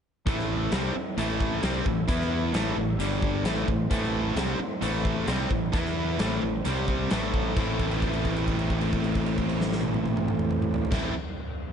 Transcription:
0.26 0.69 A1 medium
0.26 0.71 A2 medium
0.26 0.71 E3 loud
0.26 0.71 A3 loud
0.26 2.07 C4 medium
0.26 2.07 E4 medium
0.26 2.07 A4 medium
0.26 2.07 E5 medium
0.26 kick loud
0.26 closed hi-hat medium
0.39 snare soft
0.71 0.93 C2 medium
0.71 0.94 C3 medium
0.71 0.94 G3 loud
0.71 0.95 C4 loud
0.71 snare loud
0.71 closed hi-hat medium
0.94 muted distorted electric guitar stroke medium
0.94 muted fingered electric bass stroke soft
1.17 1.60 A1 medium
1.17 1.62 A2 medium
1.17 1.62 E3 medium
1.17 1.62 A3 loud
1.17 closed hi-hat medium
1.41 kick medium
1.62 1.84 C2 medium
1.62 1.84 C3 medium
1.62 1.85 G3 loud
1.62 1.85 C4 medium
1.62 snare loud
1.62 closed hi-hat medium
1.85 2.07 A1 medium
1.85 2.04 A2 medium
1.85 2.04 E3 medium
1.85 kick medium
2.08 2.51 E2 medium
2.08 2.53 E3 medium
2.08 2.53 B3 loud
2.08 2.53 E4 loud
2.08 2.54 E4 medium
2.08 2.54 B4 medium
2.08 2.54 E5 medium
2.08 kick loud
2.08 closed hi-hat medium
2.21 snare soft
2.53 2.75 A1 medium
2.53 2.75 A2 medium
2.53 2.76 E3 loud
2.53 2.77 A3 loud
2.53 3.00 C4 medium
2.53 2.99 E4 medium
2.53 2.99 A4 medium
2.53 3.00 E5 medium
2.53 snare loud
2.53 closed hi-hat medium
2.77 2.98 A1 medium
2.77 2.95 A2 medium
2.77 2.95 E3 medium
2.99 3.41 G1 loud
2.99 3.44 G2 medium
2.99 3.44 D3 medium
2.99 3.45 G3 loud
2.99 3.45 D4 medium
2.99 3.45 G4 medium
2.99 3.46 D5 medium
2.99 closed hi-hat medium
3.22 kick medium
3.44 3.65 A1 medium
3.44 3.67 A2 loud
3.44 3.67 E3 medium
3.44 3.67 A3 loud
3.44 5.72 A3 medium
3.44 5.72 C4 medium
3.44 5.72 E4 medium
3.44 5.72 C5 medium
3.44 snare loud
3.44 closed hi-hat medium
3.68 3.89 A1 medium
3.68 3.86 A2 medium
3.68 3.86 E3 medium
3.68 kick medium
3.90 4.33 A1 medium
3.90 4.35 A2 medium
3.90 4.36 E3 medium
3.90 4.36 A3 loud
3.90 kick loud
3.90 closed hi-hat medium
4.03 snare soft
4.36 4.57 C2 medium
4.36 4.59 C3 medium
4.36 4.59 G3 medium
4.36 4.59 C4 loud
4.36 snare loud
4.36 closed hi-hat medium
4.59 muted fingered electric bass stroke soft
4.59 muted distorted electric guitar stroke medium
4.82 5.24 A1 loud
4.82 5.26 A2 medium
4.82 5.27 E3 loud
4.82 5.27 A3 loud
4.82 closed hi-hat medium
5.05 kick medium
5.27 5.49 C2 loud
5.27 5.49 C3 medium
5.27 5.49 G3 medium
5.27 5.50 C4 loud
5.27 snare loud
5.27 closed hi-hat medium
5.49 5.72 A1 medium
5.49 5.68 A2 medium
5.49 5.68 E3 medium
5.49 kick medium
5.72 6.16 E2 medium
5.72 6.18 E3 medium
5.72 6.18 B3 medium
5.72 6.19 B3 medium
5.72 6.18 E4 medium
5.72 6.17 E4 medium
5.72 6.19 B4 medium
5.72 kick loud
5.72 closed hi-hat medium
5.86 snare soft
6.18 6.41 A1 medium
6.18 6.41 A2 medium
6.18 6.41 E3 loud
6.18 6.64 A3 medium
6.18 6.42 A3 loud
6.18 6.64 C4 medium
6.18 6.64 E4 medium
6.18 snare loud
6.18 closed hi-hat medium
6.42 6.64 A1 medium
6.42 6.60 A2 medium
6.42 6.61 E3 medium
6.65 7.08 C2 medium
6.65 7.10 C3 medium
6.65 7.10 G3 medium
6.65 7.11 C4 medium
6.65 7.10 C4 medium
6.65 7.11 G4 medium
6.65 7.10 C5 medium
6.65 closed hi-hat medium
6.88 kick medium
7.10 7.53 A1 medium
7.10 7.54 A2 medium
7.10 7.55 E3 medium
7.10 7.55 A3 medium
7.10 7.56 A3 medium
7.10 7.55 C4 medium
7.10 7.54 E4 medium
7.10 7.55 C5 medium
7.10 snare loud
7.10 closed hi-hat medium
7.34 kick medium
7.55 10.83 A1 medium
7.55 10.90 A2 medium
7.55 10.91 E3 medium
7.55 10.84 A3 medium
7.55 10.92 A3 medium
7.55 10.84 C4 medium
7.55 10.93 C4 medium
7.55 10.83 E4 medium
7.55 10.93 E4 medium
7.55 10.84 C5 medium
7.55 kick loud
7.55 crash medium
7.59 10.94 A4 loud
7.79 kick medium
7.79 crash soft
7.91 crash soft
8.02 kick medium
8.02 crash soft
8.14 crash soft
8.25 kick medium
8.25 crash soft
8.37 crash soft
8.48 kick medium
8.48 crash soft
8.59 crash soft
8.70 kick medium
8.70 crash soft
8.81 crash soft
8.92 kick medium
8.92 crash soft
9.04 crash soft
9.15 kick medium
9.15 crash medium
9.26 crash medium
9.38 kick medium
9.38 crash medium
9.49 crash medium
9.61 snare medium
9.72 snare medium
9.83 high tom medium
9.94 high tom loud
10.06 high tom medium
10.17 mid tom loud
10.28 mid tom medium
10.39 mid tom loud
10.51 mid tom loud
10.62 mid tom loud
10.74 floor tom loud
10.85 floor tom loud
10.91 11.11 A1 medium
10.91 11.12 A2 medium
10.91 11.12 E3 medium
10.91 11.13 A3 medium
10.91 11.13 C4 loud
10.91 11.13 C4 medium
10.91 11.13 E4 medium
10.91 11.13 E4 loud
10.91 11.13 C5 medium
10.91 kick loud
10.91 snare loud
10.91 crash medium
10.95 11.14 A4 loud

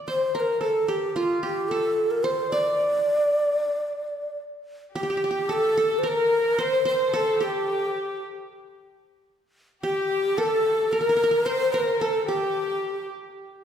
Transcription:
0.00 0.53 D5 medium
0.08 1.13 C5 medium
0.08 0.35 C5 medium
0.35 0.67 A#4 medium
0.35 0.41 C5 medium
0.40 0.61 A#4 medium
0.61 1.71 A4 medium
0.61 0.90 A4 medium
0.88 1.42 G4 medium
0.88 1.18 G4 medium
1.16 2.51 F4 medium
1.16 1.42 F4 medium
1.43 1.70 G4 medium
1.43 2.68 G4 medium
1.69 2.12 A4 medium
1.69 2.88 A4 medium
2.11 2.25 A#4 medium
2.24 2.50 C5 medium
2.24 3.30 C5 medium
2.51 4.38 D5 medium
4.95 5.03 G4 medium
4.95 5.47 G4 medium
4.95 5.54 G4 medium
5.03 5.09 G4 soft
5.10 5.17 G4 medium
5.17 5.24 G4 soft
5.24 5.30 G4 medium
5.31 6.56 G4 soft
5.49 5.77 A4 medium
5.49 6.05 A4 medium
5.49 6.00 A4 medium
5.77 6.09 A4 medium
5.99 6.09 C5 medium
6.03 7.19 A#4 medium
6.03 6.59 A#4 medium
6.08 6.63 A#4 medium
6.58 6.85 C5 medium
6.58 6.87 C5 medium
6.85 7.91 C5 medium
6.85 7.11 C5 medium
6.85 7.17 C5 medium
7.12 7.40 A4 medium
7.12 8.31 A4 medium
7.12 7.45 A4 medium
7.39 8.21 G4 medium
7.39 8.66 G4 medium
7.43 8.23 G4 medium
9.83 11.09 G4 medium
9.83 10.35 G4 medium
9.83 10.39 G4 medium
10.37 10.92 A4 medium
10.37 10.98 A4 medium
10.37 10.44 A#4 medium
10.43 10.93 A4 medium
10.92 11.43 A#4 medium
10.92 11.48 A#4 loud
10.92 11.00 A#4 medium
11.01 11.09 A#4 soft
11.09 11.16 A#4 medium
11.17 11.23 A#4 medium
11.24 11.31 A#4 medium
11.31 11.73 A#4 medium
11.46 12.51 C5 medium
11.46 11.74 C5 loud
11.46 11.72 C5 medium
11.72 11.98 A#4 medium
11.72 12.02 A#4 medium
11.72 12.07 A#4 medium
12.00 12.20 A4 medium
12.00 12.27 A4 medium
12.00 13.18 A4 medium
12.21 12.28 A4 medium
12.27 13.09 G4 medium
12.27 13.05 G4 medium
12.27 13.54 G4 medium

